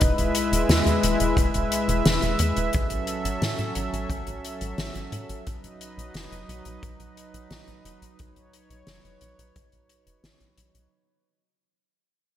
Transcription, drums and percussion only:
0.01 kick, closed hi-hat
0.18 closed hi-hat
0.35 closed hi-hat
0.53 closed hi-hat
0.69 snare, closed hi-hat
0.87 closed hi-hat
1.03 closed hi-hat
1.20 closed hi-hat
1.37 kick, closed hi-hat
1.54 closed hi-hat
1.72 closed hi-hat
1.89 closed hi-hat
2.06 snare, closed hi-hat
2.22 closed hi-hat
2.39 closed hi-hat
2.57 closed hi-hat
2.73 kick, closed hi-hat
2.90 closed hi-hat
3.07 closed hi-hat
3.25 closed hi-hat
3.42 snare, closed hi-hat
3.58 closed hi-hat
3.75 closed hi-hat
3.94 closed hi-hat
4.10 kick, closed hi-hat
4.27 closed hi-hat
4.45 closed hi-hat
4.61 closed hi-hat
4.78 snare, closed hi-hat
4.95 closed hi-hat
5.12 closed hi-hat
5.29 closed hi-hat
5.47 kick, closed hi-hat
5.64 closed hi-hat
5.81 closed hi-hat
5.99 closed hi-hat
6.14 snare, closed hi-hat
6.32 closed hi-hat
6.49 closed hi-hat
6.65 closed hi-hat
6.83 kick, closed hi-hat
7.00 closed hi-hat
7.17 closed hi-hat
7.34 closed hi-hat
7.51 snare, closed hi-hat
7.68 closed hi-hat
7.85 closed hi-hat
8.02 closed hi-hat
8.19 kick, closed hi-hat
8.36 closed hi-hat
8.53 closed hi-hat
8.70 closed hi-hat
8.87 snare, closed hi-hat
9.05 closed hi-hat
9.21 closed hi-hat
9.39 closed hi-hat
9.56 kick, closed hi-hat
9.72 closed hi-hat
9.89 closed hi-hat
10.07 closed hi-hat
10.24 snare, closed hi-hat
10.40 closed hi-hat
10.58 closed hi-hat
10.75 closed hi-hat

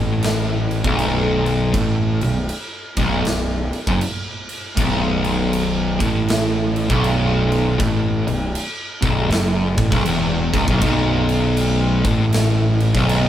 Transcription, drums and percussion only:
0.23 snare, crash
0.71 crash
0.84 kick
0.99 crash
1.46 crash
1.74 kick, crash
2.21 crash
2.49 crash
2.97 kick, crash
3.25 snare, crash
3.73 crash
3.87 kick
4.01 crash
4.49 crash
4.77 kick, crash
5.24 crash
5.53 crash
6.00 kick, crash
6.28 snare, crash
6.76 crash
6.90 kick
7.04 crash
7.52 crash
7.80 kick, crash
8.28 crash
8.55 crash
9.02 kick, crash
9.31 snare, crash
9.77 kick, crash
9.92 kick, snare
10.05 crash
10.53 kick, crash
10.68 kick
10.81 kick, crash
11.29 crash
11.57 crash
12.05 kick, crash
12.33 snare, crash
12.80 crash
12.95 kick, snare
13.09 crash

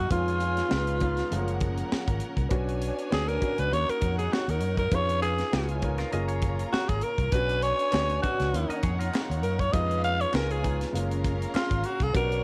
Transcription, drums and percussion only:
0.10 kick, closed hi-hat
0.28 closed hi-hat
0.40 closed hi-hat
0.57 snare, closed hi-hat
0.71 snare
0.87 closed hi-hat
1.00 kick, closed hi-hat
1.17 snare, closed hi-hat
1.32 closed hi-hat
1.48 closed hi-hat
1.60 kick, closed hi-hat
1.77 closed hi-hat
1.92 snare
2.08 kick, closed hi-hat
2.20 closed hi-hat
2.37 kick, closed hi-hat
2.50 kick, closed hi-hat
2.68 closed hi-hat
2.81 closed hi-hat
2.98 closed hi-hat
3.12 snare
3.28 closed hi-hat
3.42 kick, closed hi-hat
3.58 closed hi-hat
3.73 closed hi-hat
3.89 closed hi-hat
4.01 kick, closed hi-hat
4.19 closed hi-hat
4.33 snare
4.48 closed hi-hat
4.60 closed hi-hat
4.77 kick, closed hi-hat
4.91 kick, closed hi-hat
5.09 closed hi-hat
5.22 closed hi-hat
5.38 snare, closed hi-hat
5.53 snare
5.68 closed hi-hat
5.82 kick, closed hi-hat
5.98 snare, closed hi-hat
6.12 closed hi-hat
6.28 closed hi-hat
6.42 kick, closed hi-hat
6.59 closed hi-hat
6.74 snare
6.89 kick, closed hi-hat
7.01 closed hi-hat
7.18 kick, closed hi-hat
7.32 kick, closed hi-hat
7.49 closed hi-hat
7.62 closed hi-hat
7.79 closed hi-hat
7.93 snare, clap
8.09 closed hi-hat
8.23 kick, closed hi-hat
8.39 snare, closed hi-hat
8.54 closed hi-hat
8.70 closed hi-hat
8.82 kick, closed hi-hat
9.00 closed hi-hat
9.14 snare, clap
9.31 closed hi-hat
9.43 closed hi-hat
9.59 kick, closed hi-hat
9.73 kick, closed hi-hat
9.91 closed hi-hat
10.04 closed hi-hat
10.21 closed hi-hat
10.33 snare, clap
10.50 closed hi-hat
10.64 kick, closed hi-hat
10.81 snare, closed hi-hat
10.95 closed hi-hat
11.11 closed hi-hat
11.24 kick, closed hi-hat
11.42 closed hi-hat
11.55 snare, clap
11.71 kick, closed hi-hat
11.83 closed hi-hat
12.00 kick, closed hi-hat
12.15 kick, closed hi-hat
12.32 closed hi-hat

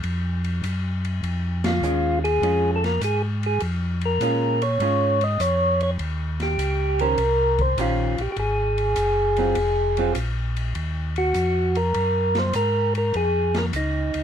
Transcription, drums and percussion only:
0.03 ride
0.44 ride
0.64 hi-hat pedal, ride
1.05 ride
1.24 ride
1.64 snare, ride
1.83 hi-hat pedal
2.25 ride
2.43 ride
2.84 snare, ride
3.01 hi-hat pedal, ride
3.43 ride
3.60 ride
4.01 ride
4.21 hi-hat pedal, ride
4.62 ride
4.80 ride
5.21 ride
5.40 hi-hat pedal, ride
5.81 ride
5.99 ride
6.40 snare, ride
6.59 hi-hat pedal, ride
6.99 ride
7.18 ride
7.58 kick, ride
7.78 hi-hat pedal, ride
8.18 ride
8.36 ride
8.78 ride
8.96 hi-hat pedal, ride
9.37 ride
9.55 ride
9.97 ride
10.15 hi-hat pedal, ride
10.56 ride
10.75 ride
11.16 ride
11.34 hi-hat pedal, ride
11.75 ride
11.94 ride
12.35 snare, ride
12.53 hi-hat pedal, ride
12.95 ride
13.14 ride
13.54 snare, ride
13.73 hi-hat pedal, ride
14.14 ride

